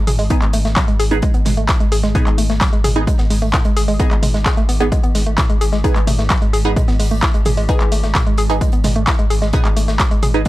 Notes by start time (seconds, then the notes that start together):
Already playing: G#2 G#3
0.07 G#1 G#4, closed hi-hat, mid tom, open hi-hat
0.19 G#1 G#3, open hi-hat
0.30 B3 D#4 G#4, kick, closed hi-hat
0.42 G#1 G#3, clap, closed hi-hat
0.53 G#1 A3, closed hi-hat, open hi-hat
0.65 G#1 A3, snare, closed hi-hat
0.76 F#3, kick, snare, clap, closed hi-hat, mid tom
0.88 G#1 G#3, closed hi-hat
0.99 G#1 G#4, closed hi-hat, open hi-hat
1.11 G#1 B3 D#4 G#4, closed hi-hat
1.22 G#3, kick, closed hi-hat
1.34 G#1 B3, closed hi-hat
1.45 G#1 G#3, snare, closed hi-hat, mid tom, open hi-hat
1.57 G#1 A3, closed hi-hat
1.68 E4, kick, snare, clap, closed hi-hat
1.80 G#1 G#3, closed hi-hat
1.92 G#1 G#4, closed hi-hat, open hi-hat
2.03 G#1 G#3, snare, closed hi-hat
2.15 B3 D#4 G#4, kick, closed hi-hat, mid tom
2.27 G#1 G#3, clap, closed hi-hat
2.38 G#1 A3, closed hi-hat, open hi-hat
2.50 G#1 A3, snare, closed hi-hat
2.61 F#3, kick, snare, clap, closed hi-hat
2.73 G#1 G#3, closed hi-hat
2.84 G#1 G#4, closed hi-hat, mid tom, open hi-hat
2.96 G#1 B3 D#4 G#4, closed hi-hat
3.07 G#3, kick, closed hi-hat
3.18 G#1 B3, snare, closed hi-hat
3.30 G#1 G#3, open hi-hat
3.42 G#1 A3, closed hi-hat
3.53 E4, kick, snare, clap, closed hi-hat, mid tom
3.65 G#1 G#3, closed hi-hat
3.77 G#1 G#4, closed hi-hat, open hi-hat
3.88 G#1 G#3, open hi-hat
3.99 B3 D#4 G#4, kick, closed hi-hat
4.11 G#1 G#3, clap, closed hi-hat
4.23 G#1 G#3, closed hi-hat, mid tom, open hi-hat
4.34 G#1 G#3, snare, closed hi-hat
4.46 G#4, kick, snare, clap, closed hi-hat
4.57 G#1 A3, closed hi-hat
4.69 G#1 B3, closed hi-hat, open hi-hat
4.80 G#1 B3 D#4 G#4, closed hi-hat
4.92 G#3, kick, closed hi-hat
5.03 G#1 B3, closed hi-hat
5.15 G#1 G#3, snare, closed hi-hat, open hi-hat
5.26 G#1 A3, closed hi-hat
5.38 E4, kick, snare, clap, closed hi-hat, mid tom
5.50 G#1 G#3, closed hi-hat
5.61 G#1 G#4, closed hi-hat, open hi-hat
5.72 G#1 G#3, snare, closed hi-hat
5.84 B3 D#4 G#4, kick, closed hi-hat
5.96 G#1 G#3, clap, closed hi-hat
6.07 G#1 A3, closed hi-hat, mid tom, open hi-hat
6.19 G#1 A3, snare, closed hi-hat
6.29 F#3, kick, snare, clap, closed hi-hat
6.42 G#1 G#3, closed hi-hat
6.53 G#1 G#4, closed hi-hat, open hi-hat
6.65 G#1 B3 D#4 G#4, closed hi-hat
6.76 G#3, kick, closed hi-hat, mid tom
6.88 G#1 B3, snare, closed hi-hat
6.99 G#1 G#3, open hi-hat
7.11 G#1 A3, closed hi-hat
7.22 E4, kick, snare, clap, closed hi-hat
7.34 G#1 G#3, closed hi-hat
7.45 G#1 G#4, closed hi-hat, mid tom, open hi-hat
7.57 G#1 G#3, open hi-hat
7.69 B3 D#4 G#4, kick, closed hi-hat
7.80 G#1 G#3, clap, closed hi-hat
7.92 G#1 A3, closed hi-hat, open hi-hat
8.03 G#1 A3, snare, closed hi-hat
8.15 F#3, kick, snare, clap, closed hi-hat, mid tom
8.27 G#1 G#3, closed hi-hat
8.38 G#1 G#4, closed hi-hat, open hi-hat
8.50 G#1 B3 D#4 G#4, closed hi-hat
8.61 G#3, kick, closed hi-hat
8.72 G#1 B3, closed hi-hat
8.84 G#1 G#3, snare, closed hi-hat, mid tom, open hi-hat
8.96 G#1 A3, closed hi-hat
9.07 E4, kick, snare, clap, closed hi-hat
9.19 G#1 G#3, closed hi-hat
9.30 G#1 G#4, closed hi-hat, open hi-hat
9.42 G#1 G#3, snare, closed hi-hat
9.53 B3 D#4 G#4, kick, closed hi-hat, mid tom
9.65 G#1 G#3, clap, closed hi-hat
9.76 G#1 A3, closed hi-hat, open hi-hat
9.88 G#1 A3, snare, closed hi-hat
10.00 F#3, kick, snare, clap, closed hi-hat
10.11 G#1 G#3, closed hi-hat
10.22 G#1 G#4, closed hi-hat, mid tom, open hi-hat
10.34 G#1 B3 D#4 G#4, closed hi-hat
10.45 closed hi-hat